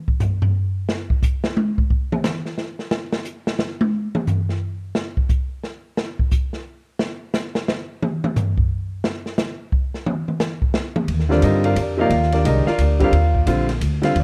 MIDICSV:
0, 0, Header, 1, 5, 480
1, 0, Start_track
1, 0, Tempo, 340329
1, 1247, Time_signature, 3, 2, 24, 8
1, 20080, End_track
2, 0, Start_track
2, 0, Title_t, "Grand piano"
2, 0, Program_c, 0, 0
2, 15925, Note_on_c, 0, 50, 80
2, 15936, Note_on_c, 0, 55, 69
2, 15938, Note_on_c, 0, 60, 75
2, 15948, Note_on_c, 0, 65, 80
2, 15954, Note_on_c, 0, 70, 67
2, 15956, Note_on_c, 0, 74, 92
2, 15962, Note_on_c, 0, 62, 72
2, 15967, Note_on_c, 0, 67, 67
2, 16113, Note_off_c, 0, 70, 0
2, 16117, Note_off_c, 0, 74, 0
2, 16120, Note_off_c, 0, 62, 0
2, 16123, Note_off_c, 0, 67, 0
2, 16134, Note_on_c, 0, 70, 66
2, 16136, Note_on_c, 0, 75, 90
2, 16148, Note_on_c, 0, 67, 65
2, 16149, Note_on_c, 0, 63, 66
2, 16417, Note_off_c, 0, 70, 0
2, 16420, Note_off_c, 0, 65, 0
2, 16422, Note_off_c, 0, 75, 0
2, 16428, Note_off_c, 0, 63, 0
2, 16428, Note_off_c, 0, 67, 0
2, 16433, Note_on_c, 0, 74, 78
2, 16435, Note_on_c, 0, 77, 91
2, 16438, Note_on_c, 0, 70, 75
2, 16442, Note_on_c, 0, 65, 66
2, 16553, Note_off_c, 0, 50, 0
2, 16558, Note_off_c, 0, 55, 0
2, 16560, Note_off_c, 0, 60, 0
2, 16584, Note_off_c, 0, 74, 0
2, 16597, Note_off_c, 0, 77, 0
2, 16599, Note_off_c, 0, 70, 0
2, 16601, Note_off_c, 0, 65, 0
2, 16605, Note_on_c, 0, 74, 69
2, 16611, Note_on_c, 0, 67, 51
2, 16613, Note_on_c, 0, 62, 50
2, 16625, Note_on_c, 0, 70, 46
2, 16889, Note_on_c, 0, 48, 82
2, 16897, Note_off_c, 0, 74, 0
2, 16900, Note_off_c, 0, 67, 0
2, 16900, Note_on_c, 0, 53, 77
2, 16901, Note_off_c, 0, 62, 0
2, 16907, Note_off_c, 0, 70, 0
2, 16912, Note_on_c, 0, 58, 80
2, 16920, Note_on_c, 0, 63, 92
2, 16939, Note_on_c, 0, 65, 77
2, 16939, Note_on_c, 0, 77, 102
2, 16946, Note_on_c, 0, 74, 77
2, 16948, Note_on_c, 0, 70, 76
2, 17053, Note_off_c, 0, 48, 0
2, 17058, Note_off_c, 0, 53, 0
2, 17064, Note_off_c, 0, 58, 0
2, 17068, Note_off_c, 0, 63, 0
2, 17371, Note_off_c, 0, 74, 0
2, 17383, Note_off_c, 0, 70, 0
2, 17392, Note_on_c, 0, 74, 86
2, 17404, Note_on_c, 0, 70, 64
2, 17405, Note_on_c, 0, 67, 67
2, 17409, Note_on_c, 0, 62, 73
2, 17532, Note_off_c, 0, 65, 0
2, 17533, Note_off_c, 0, 77, 0
2, 17547, Note_off_c, 0, 62, 0
2, 17552, Note_off_c, 0, 67, 0
2, 17552, Note_on_c, 0, 51, 66
2, 17553, Note_on_c, 0, 56, 60
2, 17558, Note_off_c, 0, 74, 0
2, 17564, Note_off_c, 0, 70, 0
2, 17569, Note_on_c, 0, 62, 63
2, 17573, Note_on_c, 0, 67, 71
2, 17576, Note_on_c, 0, 75, 84
2, 17595, Note_on_c, 0, 70, 65
2, 17598, Note_on_c, 0, 63, 65
2, 17831, Note_off_c, 0, 51, 0
2, 17832, Note_off_c, 0, 56, 0
2, 17839, Note_off_c, 0, 62, 0
2, 17841, Note_off_c, 0, 67, 0
2, 17859, Note_off_c, 0, 70, 0
2, 17865, Note_off_c, 0, 75, 0
2, 17870, Note_on_c, 0, 77, 97
2, 17876, Note_off_c, 0, 63, 0
2, 17880, Note_on_c, 0, 70, 81
2, 17881, Note_on_c, 0, 74, 82
2, 17890, Note_on_c, 0, 65, 90
2, 18038, Note_off_c, 0, 77, 0
2, 18043, Note_off_c, 0, 70, 0
2, 18043, Note_off_c, 0, 74, 0
2, 18048, Note_off_c, 0, 65, 0
2, 18071, Note_on_c, 0, 70, 51
2, 18074, Note_on_c, 0, 74, 66
2, 18075, Note_on_c, 0, 62, 52
2, 18079, Note_on_c, 0, 67, 50
2, 18329, Note_on_c, 0, 50, 84
2, 18330, Note_off_c, 0, 67, 0
2, 18338, Note_on_c, 0, 55, 73
2, 18347, Note_on_c, 0, 60, 78
2, 18351, Note_on_c, 0, 67, 94
2, 18354, Note_off_c, 0, 70, 0
2, 18355, Note_off_c, 0, 74, 0
2, 18356, Note_off_c, 0, 62, 0
2, 18391, Note_on_c, 0, 65, 68
2, 18392, Note_on_c, 0, 74, 78
2, 18392, Note_on_c, 0, 77, 94
2, 18400, Note_on_c, 0, 70, 72
2, 18496, Note_off_c, 0, 50, 0
2, 18500, Note_off_c, 0, 55, 0
2, 18505, Note_off_c, 0, 60, 0
2, 18507, Note_off_c, 0, 67, 0
2, 18983, Note_off_c, 0, 65, 0
2, 18983, Note_off_c, 0, 74, 0
2, 18983, Note_off_c, 0, 77, 0
2, 18987, Note_off_c, 0, 70, 0
2, 18991, Note_on_c, 0, 50, 77
2, 19002, Note_on_c, 0, 55, 64
2, 19014, Note_on_c, 0, 60, 73
2, 19014, Note_on_c, 0, 65, 91
2, 19274, Note_off_c, 0, 50, 0
2, 19280, Note_off_c, 0, 55, 0
2, 19286, Note_off_c, 0, 60, 0
2, 19286, Note_off_c, 0, 65, 0
2, 19770, Note_on_c, 0, 50, 77
2, 19776, Note_on_c, 0, 55, 75
2, 19787, Note_on_c, 0, 60, 75
2, 19796, Note_on_c, 0, 65, 86
2, 19816, Note_on_c, 0, 77, 86
2, 19940, Note_off_c, 0, 50, 0
2, 19943, Note_off_c, 0, 55, 0
2, 19949, Note_off_c, 0, 60, 0
2, 19953, Note_off_c, 0, 65, 0
2, 19976, Note_off_c, 0, 77, 0
2, 20025, Note_on_c, 0, 74, 60
2, 20080, Note_off_c, 0, 74, 0
2, 20080, End_track
3, 0, Start_track
3, 0, Title_t, "Upright bass"
3, 0, Program_c, 1, 32
3, 15627, Note_on_c, 1, 39, 89
3, 16096, Note_off_c, 1, 39, 0
3, 16111, Note_on_c, 1, 43, 92
3, 16573, Note_off_c, 1, 43, 0
3, 16582, Note_on_c, 1, 41, 82
3, 17055, Note_off_c, 1, 41, 0
3, 17061, Note_on_c, 1, 39, 89
3, 17536, Note_off_c, 1, 39, 0
3, 17560, Note_on_c, 1, 36, 95
3, 17844, Note_off_c, 1, 36, 0
3, 18026, Note_on_c, 1, 38, 79
3, 18491, Note_off_c, 1, 38, 0
3, 18500, Note_on_c, 1, 39, 80
3, 18979, Note_off_c, 1, 39, 0
3, 18993, Note_on_c, 1, 34, 96
3, 19467, Note_off_c, 1, 34, 0
3, 19475, Note_on_c, 1, 38, 93
3, 19949, Note_off_c, 1, 38, 0
3, 19960, Note_on_c, 1, 39, 88
3, 20080, Note_off_c, 1, 39, 0
3, 20080, End_track
4, 0, Start_track
4, 0, Title_t, "Muted upright bass strokes"
4, 17866, Note_on_c, 9, 29, 39
4, 18007, Note_off_c, 9, 29, 0
4, 20080, End_track
5, 0, Start_track
5, 0, Title_t, "Drums"
5, 111, Note_on_c, 9, 36, 77
5, 252, Note_off_c, 9, 36, 0
5, 282, Note_on_c, 9, 44, 59
5, 286, Note_on_c, 9, 43, 96
5, 423, Note_off_c, 9, 44, 0
5, 427, Note_off_c, 9, 43, 0
5, 592, Note_on_c, 9, 43, 109
5, 733, Note_off_c, 9, 43, 0
5, 1251, Note_on_c, 9, 38, 95
5, 1392, Note_off_c, 9, 38, 0
5, 1553, Note_on_c, 9, 36, 84
5, 1694, Note_off_c, 9, 36, 0
5, 1728, Note_on_c, 9, 44, 64
5, 1729, Note_on_c, 9, 36, 83
5, 1869, Note_off_c, 9, 44, 0
5, 1870, Note_off_c, 9, 36, 0
5, 2027, Note_on_c, 9, 38, 93
5, 2168, Note_off_c, 9, 38, 0
5, 2211, Note_on_c, 9, 48, 94
5, 2352, Note_off_c, 9, 48, 0
5, 2511, Note_on_c, 9, 36, 83
5, 2652, Note_off_c, 9, 36, 0
5, 2686, Note_on_c, 9, 36, 84
5, 2827, Note_off_c, 9, 36, 0
5, 2995, Note_on_c, 9, 47, 105
5, 3136, Note_off_c, 9, 47, 0
5, 3157, Note_on_c, 9, 44, 54
5, 3161, Note_on_c, 9, 38, 99
5, 3298, Note_off_c, 9, 44, 0
5, 3302, Note_off_c, 9, 38, 0
5, 3463, Note_on_c, 9, 38, 40
5, 3604, Note_off_c, 9, 38, 0
5, 3634, Note_on_c, 9, 38, 56
5, 3775, Note_off_c, 9, 38, 0
5, 3936, Note_on_c, 9, 38, 49
5, 4077, Note_off_c, 9, 38, 0
5, 4107, Note_on_c, 9, 38, 95
5, 4248, Note_off_c, 9, 38, 0
5, 4408, Note_on_c, 9, 38, 101
5, 4549, Note_off_c, 9, 38, 0
5, 4581, Note_on_c, 9, 44, 63
5, 4722, Note_off_c, 9, 44, 0
5, 4895, Note_on_c, 9, 38, 100
5, 5036, Note_off_c, 9, 38, 0
5, 5061, Note_on_c, 9, 38, 99
5, 5202, Note_off_c, 9, 38, 0
5, 5370, Note_on_c, 9, 48, 107
5, 5511, Note_off_c, 9, 48, 0
5, 5851, Note_on_c, 9, 47, 100
5, 5992, Note_off_c, 9, 47, 0
5, 6023, Note_on_c, 9, 44, 59
5, 6028, Note_on_c, 9, 43, 93
5, 6164, Note_off_c, 9, 44, 0
5, 6169, Note_off_c, 9, 43, 0
5, 6337, Note_on_c, 9, 38, 40
5, 6478, Note_off_c, 9, 38, 0
5, 6981, Note_on_c, 9, 38, 102
5, 7122, Note_off_c, 9, 38, 0
5, 7293, Note_on_c, 9, 36, 75
5, 7434, Note_off_c, 9, 36, 0
5, 7461, Note_on_c, 9, 44, 55
5, 7468, Note_on_c, 9, 36, 90
5, 7602, Note_off_c, 9, 44, 0
5, 7609, Note_off_c, 9, 36, 0
5, 7947, Note_on_c, 9, 38, 51
5, 8088, Note_off_c, 9, 38, 0
5, 8425, Note_on_c, 9, 38, 99
5, 8566, Note_off_c, 9, 38, 0
5, 8736, Note_on_c, 9, 36, 79
5, 8877, Note_off_c, 9, 36, 0
5, 8900, Note_on_c, 9, 44, 66
5, 8909, Note_on_c, 9, 36, 81
5, 9042, Note_off_c, 9, 44, 0
5, 9050, Note_off_c, 9, 36, 0
5, 9210, Note_on_c, 9, 38, 45
5, 9351, Note_off_c, 9, 38, 0
5, 9864, Note_on_c, 9, 38, 107
5, 10005, Note_off_c, 9, 38, 0
5, 10345, Note_on_c, 9, 44, 57
5, 10349, Note_on_c, 9, 38, 105
5, 10486, Note_off_c, 9, 44, 0
5, 10490, Note_off_c, 9, 38, 0
5, 10651, Note_on_c, 9, 38, 99
5, 10792, Note_off_c, 9, 38, 0
5, 10836, Note_on_c, 9, 38, 101
5, 10977, Note_off_c, 9, 38, 0
5, 11318, Note_on_c, 9, 47, 108
5, 11459, Note_off_c, 9, 47, 0
5, 11622, Note_on_c, 9, 47, 102
5, 11763, Note_off_c, 9, 47, 0
5, 11791, Note_on_c, 9, 44, 63
5, 11795, Note_on_c, 9, 43, 120
5, 11932, Note_off_c, 9, 44, 0
5, 11936, Note_off_c, 9, 43, 0
5, 12095, Note_on_c, 9, 36, 85
5, 12236, Note_off_c, 9, 36, 0
5, 12751, Note_on_c, 9, 38, 108
5, 12892, Note_off_c, 9, 38, 0
5, 13059, Note_on_c, 9, 38, 49
5, 13200, Note_off_c, 9, 38, 0
5, 13225, Note_on_c, 9, 44, 62
5, 13230, Note_on_c, 9, 38, 113
5, 13367, Note_off_c, 9, 44, 0
5, 13371, Note_off_c, 9, 38, 0
5, 13714, Note_on_c, 9, 36, 88
5, 13855, Note_off_c, 9, 36, 0
5, 14025, Note_on_c, 9, 38, 42
5, 14166, Note_off_c, 9, 38, 0
5, 14194, Note_on_c, 9, 47, 107
5, 14335, Note_off_c, 9, 47, 0
5, 14501, Note_on_c, 9, 47, 57
5, 14642, Note_off_c, 9, 47, 0
5, 14664, Note_on_c, 9, 44, 68
5, 14669, Note_on_c, 9, 38, 117
5, 14805, Note_off_c, 9, 44, 0
5, 14810, Note_off_c, 9, 38, 0
5, 14976, Note_on_c, 9, 36, 80
5, 15117, Note_off_c, 9, 36, 0
5, 15146, Note_on_c, 9, 38, 113
5, 15287, Note_off_c, 9, 38, 0
5, 15456, Note_on_c, 9, 47, 116
5, 15597, Note_off_c, 9, 47, 0
5, 15629, Note_on_c, 9, 51, 62
5, 15770, Note_off_c, 9, 51, 0
5, 15790, Note_on_c, 9, 38, 31
5, 15931, Note_off_c, 9, 38, 0
5, 15951, Note_on_c, 9, 38, 51
5, 16093, Note_off_c, 9, 38, 0
5, 16108, Note_on_c, 9, 44, 58
5, 16108, Note_on_c, 9, 51, 71
5, 16249, Note_off_c, 9, 44, 0
5, 16249, Note_off_c, 9, 51, 0
5, 16416, Note_on_c, 9, 51, 50
5, 16557, Note_off_c, 9, 51, 0
5, 16590, Note_on_c, 9, 44, 63
5, 16590, Note_on_c, 9, 51, 75
5, 16731, Note_off_c, 9, 44, 0
5, 16731, Note_off_c, 9, 51, 0
5, 17071, Note_on_c, 9, 51, 64
5, 17212, Note_off_c, 9, 51, 0
5, 17244, Note_on_c, 9, 38, 33
5, 17381, Note_on_c, 9, 51, 54
5, 17385, Note_off_c, 9, 38, 0
5, 17403, Note_on_c, 9, 38, 43
5, 17523, Note_off_c, 9, 51, 0
5, 17544, Note_off_c, 9, 38, 0
5, 17562, Note_on_c, 9, 44, 62
5, 17562, Note_on_c, 9, 51, 75
5, 17703, Note_off_c, 9, 44, 0
5, 17703, Note_off_c, 9, 51, 0
5, 17866, Note_on_c, 9, 38, 57
5, 18007, Note_off_c, 9, 38, 0
5, 18032, Note_on_c, 9, 44, 53
5, 18032, Note_on_c, 9, 51, 72
5, 18173, Note_off_c, 9, 44, 0
5, 18173, Note_off_c, 9, 51, 0
5, 18339, Note_on_c, 9, 51, 51
5, 18342, Note_on_c, 9, 36, 54
5, 18480, Note_off_c, 9, 51, 0
5, 18483, Note_off_c, 9, 36, 0
5, 18515, Note_on_c, 9, 51, 63
5, 18656, Note_off_c, 9, 51, 0
5, 18824, Note_on_c, 9, 36, 65
5, 18965, Note_off_c, 9, 36, 0
5, 18994, Note_on_c, 9, 44, 64
5, 18994, Note_on_c, 9, 51, 72
5, 19135, Note_off_c, 9, 44, 0
5, 19135, Note_off_c, 9, 51, 0
5, 19306, Note_on_c, 9, 51, 54
5, 19310, Note_on_c, 9, 38, 46
5, 19447, Note_off_c, 9, 51, 0
5, 19451, Note_off_c, 9, 38, 0
5, 19482, Note_on_c, 9, 44, 63
5, 19482, Note_on_c, 9, 51, 73
5, 19623, Note_off_c, 9, 44, 0
5, 19623, Note_off_c, 9, 51, 0
5, 19792, Note_on_c, 9, 51, 54
5, 19796, Note_on_c, 9, 38, 60
5, 19933, Note_off_c, 9, 51, 0
5, 19937, Note_off_c, 9, 38, 0
5, 19967, Note_on_c, 9, 51, 60
5, 20080, Note_off_c, 9, 51, 0
5, 20080, End_track
0, 0, End_of_file